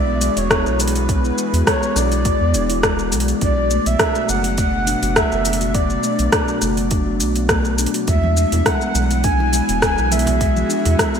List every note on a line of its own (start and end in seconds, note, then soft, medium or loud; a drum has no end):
0.00 0.30 B1 medium
0.00 3.41 E3 medium
0.00 5.29 B3 medium
0.00 0.63 D4 medium
0.00 4.88 F#4 medium
0.00 5.13 G#4 medium
0.00 0.39 D5 loud
0.07 0.20 B3 medium
0.21 0.30 G#3 loud
0.21 open hi-hat medium
0.21 shaker medium
0.37 0.67 E1 loud
0.37 0.45 B3 medium
0.37 0.82 C#5 loud
0.37 open hi-hat soft
0.37 shaker soft
0.50 0.65 D4 loud
0.50 kick loud
0.50 cross-stick loud
0.50 open hi-hat soft
0.50 shaker soft
0.66 1.31 B1 loud
0.66 0.78 E4 medium
0.66 shaker soft
0.79 0.88 G#3 loud
0.79 1.67 B4 loud
0.79 open hi-hat soft
0.79 shaker medium
0.87 open hi-hat medium
0.95 1.07 B3 medium
0.95 open hi-hat soft
0.95 shaker soft
1.08 1.23 D4 medium
1.08 kick loud
1.08 open hi-hat medium
1.08 shaker soft
1.24 1.36 E4 medium
1.24 shaker soft
1.38 1.53 G#3 medium
1.38 shaker medium
1.53 1.63 E2 medium
1.53 open hi-hat soft
1.53 shaker soft
1.67 1.76 G#3 loud
1.67 1.99 C#5 loud
1.67 kick loud
1.67 cross-stick loud
1.67 open hi-hat medium
1.67 shaker soft
1.83 1.90 B3 medium
1.83 shaker soft
1.96 2.33 B1 medium
1.96 2.11 D4 loud
1.96 3.13 D5 loud
1.96 cross-stick soft
1.96 open hi-hat soft
1.96 shaker medium
2.12 2.24 E4 medium
2.12 open hi-hat soft
2.12 shaker soft
2.25 2.34 G#3 medium
2.25 kick loud
2.25 open hi-hat medium
2.25 shaker soft
2.41 2.56 E2 loud
2.41 2.53 B3 medium
2.54 3.14 E1 medium
2.54 2.69 D4 medium
2.54 open hi-hat medium
2.54 shaker medium
2.70 2.82 E4 medium
2.70 open hi-hat soft
2.70 shaker soft
2.83 2.98 G#3 medium
2.83 kick loud
2.83 cross-stick loud
2.83 open hi-hat soft
2.83 shaker soft
2.99 3.11 B3 medium
2.99 shaker soft
3.12 3.34 B1 loud
3.12 3.21 G#3 loud
3.12 open hi-hat soft
3.12 shaker medium
3.20 open hi-hat medium
3.28 3.36 B3 medium
3.28 open hi-hat soft
3.28 shaker soft
3.41 3.79 B1 loud
3.41 8.08 B2 medium
3.41 3.56 D4 loud
3.41 3.88 D5 loud
3.41 kick loud
3.41 open hi-hat medium
3.41 shaker soft
3.57 3.70 F#4 medium
3.71 3.80 A3 loud
3.71 shaker medium
3.78 8.08 F#3 medium
3.86 3.96 B1 medium
3.86 3.99 B3 medium
3.86 4.31 E5 loud
3.86 open hi-hat soft
3.86 shaker soft
3.96 9.95 D4 medium
3.96 cross-stick loud
3.96 open hi-hat medium
3.96 shaker soft
4.00 4.15 D4 medium
4.00 kick loud
4.15 4.28 F#4 medium
4.15 shaker soft
4.29 4.96 F#1 medium
4.29 4.44 A3 medium
4.29 4.58 F#5 loud
4.29 shaker medium
4.44 4.57 B3 medium
4.44 open hi-hat soft
4.44 shaker soft
4.57 4.67 A3 loud
4.57 5.18 F#5 loud
4.57 kick loud
4.57 open hi-hat medium
4.57 shaker soft
4.73 4.81 B3 medium
4.87 5.02 D4 loud
4.87 open hi-hat medium
4.87 shaker medium
5.02 5.23 F#1 loud
5.02 5.15 F#4 medium
5.02 open hi-hat soft
5.02 shaker soft
5.16 5.25 A3 loud
5.16 5.74 E5 loud
5.16 kick loud
5.16 cross-stick loud
5.16 open hi-hat soft
5.16 shaker soft
5.32 5.97 F#1 loud
5.32 5.44 B3 medium
5.32 shaker soft
5.45 5.60 D4 medium
5.45 open hi-hat soft
5.45 shaker medium
5.53 open hi-hat medium
5.61 5.74 F#4 medium
5.61 open hi-hat soft
5.61 shaker soft
5.74 5.90 A3 medium
5.74 6.58 D5 medium
5.74 kick loud
5.74 open hi-hat soft
5.74 shaker soft
5.90 6.03 B3 medium
5.90 shaker soft
6.03 6.13 A3 loud
6.03 shaker medium
6.19 6.29 B1 medium
6.19 6.27 B3 medium
6.19 open hi-hat soft
6.19 shaker soft
6.32 6.48 D4 loud
6.32 kick loud
6.32 cross-stick loud
6.32 open hi-hat medium
6.32 shaker soft
6.48 6.61 F#4 medium
6.48 shaker soft
6.62 7.22 F#1 medium
6.62 6.71 A3 loud
6.62 cross-stick soft
6.62 open hi-hat soft
6.62 shaker medium
6.77 6.90 B3 medium
6.77 open hi-hat soft
6.77 shaker soft
6.91 7.06 D4 medium
6.91 kick loud
6.91 open hi-hat medium
6.91 shaker soft
7.07 7.19 F#4 medium
7.20 7.87 B1 medium
7.20 7.35 A3 medium
7.20 open hi-hat medium
7.20 shaker medium
7.36 7.48 B3 medium
7.36 open hi-hat soft
7.36 shaker soft
7.49 7.59 A3 loud
7.49 kick loud
7.49 cross-stick medium
7.49 open hi-hat soft
7.49 shaker soft
7.65 7.73 B3 medium
7.65 shaker soft
7.78 7.94 D4 medium
7.78 open hi-hat soft
7.78 shaker medium
7.86 open hi-hat medium
7.94 8.06 F#4 medium
7.94 open hi-hat soft
7.94 shaker soft
8.08 8.45 E2 loud
8.08 11.20 E3 medium
8.08 8.17 G#3 medium
8.08 8.35 E5 medium
8.08 kick loud
8.08 open hi-hat medium
8.08 shaker soft
8.23 8.35 B3 medium
8.23 high conga medium
8.37 8.52 D4 medium
8.37 8.68 E5 medium
8.37 shaker medium
8.52 8.62 E2 medium
8.52 8.65 E4 medium
8.52 open hi-hat soft
8.52 low conga medium
8.52 shaker soft
8.57 11.20 B3 medium
8.66 8.81 G#3 medium
8.66 9.25 F#5 loud
8.66 kick loud
8.66 cross-stick medium
8.66 open hi-hat soft
8.66 shaker soft
8.81 8.94 B3 medium
8.81 shaker soft
8.95 9.62 B1 loud
8.95 9.04 G#3 medium
8.95 shaker medium
9.11 9.19 B3 medium
9.11 open hi-hat soft
9.11 muted conga soft
9.11 shaker soft
9.24 9.39 D4 loud
9.24 9.82 G#5 loud
9.24 kick loud
9.24 open hi-hat medium
9.24 shaker soft
9.40 9.52 E4 medium
9.40 muted conga soft
9.49 11.20 F#4 loud
9.49 muted conga soft
9.53 9.62 G#3 loud
9.53 11.20 G#4 medium
9.53 open hi-hat medium
9.53 shaker medium
9.69 10.00 E1 loud
9.69 9.81 B3 medium
9.69 open hi-hat soft
9.69 shaker soft
9.82 10.13 G#5 loud
9.82 kick loud
9.82 cross-stick medium
9.82 open hi-hat soft
9.82 shaker soft
9.98 10.64 B1 loud
9.98 10.10 E4 medium
9.98 shaker soft
10.12 10.26 G#3 medium
10.12 10.40 E5 loud
10.12 open hi-hat soft
10.12 muted conga medium
10.12 shaker medium
10.19 open hi-hat medium
10.26 10.39 B3 medium
10.26 open hi-hat soft
10.26 muted conga medium
10.26 high conga medium
10.26 low conga medium
10.26 shaker soft
10.40 10.49 G#3 loud
10.40 11.20 E5 medium
10.40 kick loud
10.40 open hi-hat medium
10.40 shaker soft
10.56 10.64 B3 medium
10.56 high conga medium
10.56 shaker soft
10.69 10.85 D4 loud
10.69 shaker medium
10.85 10.95 E2 medium
10.85 10.97 E4 medium
10.85 open hi-hat soft
10.85 low conga medium
10.85 shaker soft
10.99 11.08 G#3 loud
10.99 kick loud
10.99 cross-stick medium
10.99 open hi-hat medium
10.99 shaker soft
11.14 11.20 B3 medium
11.14 shaker soft